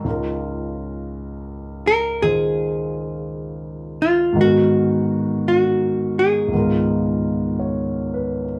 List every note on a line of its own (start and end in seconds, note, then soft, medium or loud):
0.04 4.37 C#2 soft
0.04 4.38 C#3 soft
0.04 4.38 D#4 soft
0.04 2.22 F4 soft
0.10 4.40 A#4 soft
1.87 2.24 A#4 medium
2.22 4.34 D#3 soft
2.22 4.38 F4 soft
2.22 4.02 G#4 medium
2.22 4.39 G#4 soft
2.22 4.39 C5 soft
4.02 4.39 F4 medium
4.33 6.49 G#2 medium
4.33 6.51 D#3 medium
4.39 6.52 B3 soft
4.39 5.47 F#4 medium
4.39 6.53 F#4 soft
4.44 6.55 A#4 soft
5.48 6.18 F#4 medium
6.19 8.27 G#4 medium
6.48 8.59 C#2 soft
6.48 8.59 G#2 soft
6.53 8.59 D#3 soft
6.53 8.59 B3 soft
6.53 8.59 F4 soft
6.59 8.59 A#4 soft
7.59 8.44 C#5 soft
8.14 8.59 B4 soft